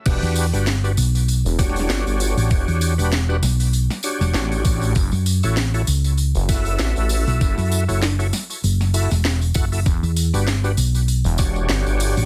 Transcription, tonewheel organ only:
X:1
M:4/4
L:1/16
Q:"Swing 16ths" 1/4=98
K:Edor
V:1 name="Tonewheel organ"
[DFGB]3 [DFGB] z [DFGB] z4 [DFGc]6- | [DFGc]3 [DFGB] z [DFGB] z4 [DFGc]6 | z3 [EFAc] z [EFAc] z4 [EFAe]6- | [EFAe]3 [EFAc] z [EFAc] z4 [EFAe] z3 [EFAf] [EFAe] |
z3 [DFGB] z [DFGB] z4 [DFGc]6 |]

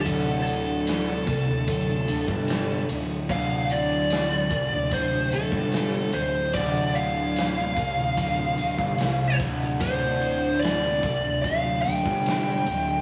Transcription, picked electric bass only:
X:1
M:4/4
L:1/16
Q:1/4=74
K:Dm
V:1 name="Picked electric bass" clef=bass
D,,,6 C,, D,,, D,,,2 D,,, G,,,3 D,,,2 | D,,,6 C,, D,,, D,,,2 D,,, G,,,3 D,,,2 | D,,,6 C,, D,,, D,,,2 D,,, G,,, C,,2 D,,,2 | D,,,6 C,, D,,, D,,,2 D,,, G,,,3 D,,,2 |]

